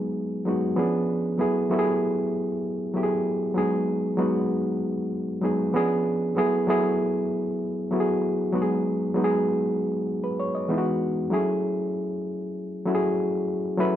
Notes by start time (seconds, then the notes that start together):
Already playing: F#3 G#3 B3 D#4 G#4
0.45 F#3 G#3 B3 D#4 F#4
0.76 F3 B3 C#4 D4 G#4
1.38 F#3 A3 B3 E4 G#4
1.69 F#3 A3 B3 E4 G4
1.79 G#4
2.94 F#3 A3 B3 E4 G4
3.03 G#4
3.55 F#3 G#3 B3 D#4 G#4
4.17 F#3 G#3 B3 D#4 F#4
5.41 F#3 G#3 B3 D#4 G#4
5.73 F3 B3 C#4 D4 G#4
6.35 F#3 A3 B3 E4 G#4
6.67 F#3 A3 B3 E4 G#4
7.91 F#3 A3 B3 E4 F#4
8.00 G#4
8.53 F#3 G#3 B3 D#4 F#4
8.62 G#4
9.14 F#3 G#3 B3 D#4 F#4
9.24 G#4
10.24 B4
10.40 C#5
10.55 D#5
10.68 E3 G#3 B3 D#4 E4
10.78 F#4
11.30 F#3 A3 C#4 E4 G#4
12.86 F#3 A3 C#4 E4 F#4
12.95 G#4
13.77 F#3 A3 C#4 E4 B4